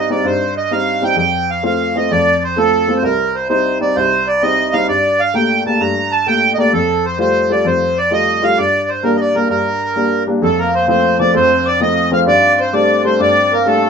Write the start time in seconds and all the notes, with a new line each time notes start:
Already playing: G2
0.09 G3 C4 D#4 D5
0.24 G2 C5
0.57 D#5
0.71 G3 C4 D#4 F5
1.01 G3 C4 D#4 G5
1.16 F2 G5
1.50 F5
1.63 A3 C4 F4 F5
1.95 A3 C4 F4 D#5
2.11 F2 D5
2.44 C5
2.57 A3 C4 F4 A4
2.88 A3 C4 F4
2.97 C5
3.03 C2 A#4
3.35 C5
3.49 G3 C4 D#4 C5
3.80 G3 C4 D#4 D5
3.96 C2 C5
4.27 D5
4.42 G3 C4 D#4 D#5
4.73 G3 C4 D#4 F5
4.88 G2 D5
5.20 F5
5.34 A3 A#3 G4 G5
5.66 A3 A#3 G4 A5
5.81 G2 A#5
6.12 A5
6.26 A3 A#3 G4 G5
6.54 A3 A#3 D#5
6.59 G4 D5
6.73 F2 A4
7.05 C5
7.18 G3 A3 F4 C5
7.49 G3 A3 F4 D5
7.65 F2 C5
7.97 D5
8.10 G3 A3 F4 D#5
8.42 G3 A3 F4 F5
8.57 G2 D5
8.88 C5
9.03 G3 A#3 D4 A#4
9.16 D#5
9.20 D5
9.34 G3 A#3 D4 A#4
9.50 G2 A#4
9.96 G3 A#3 D4
10.27 G3 A#3 D4
10.42 F2 A3 A4 A5
10.59 A#3 A#4 A#5
10.74 C4 C5 C6
10.88 F3 A3 C4 C5 C6
11.19 F3 A3 C4 D4 D5 D6
11.34 F2 C4 C5 C6
11.66 D4 D5 D6
11.80 F3 A3 C4 D#4 D#5 D#6
12.11 F3 A3 C4 F4 F5 F6
12.26 G2 D4 D5 D6
12.59 C4 C5 C6
12.73 G3 A3 D4 D5 D6
13.04 G3 A3 C4 D4 C5 C6
13.20 G2 D4 D5 D6
13.51 A#3 A#4
13.65 G3 A3 D4 A4 A5
13.82 A3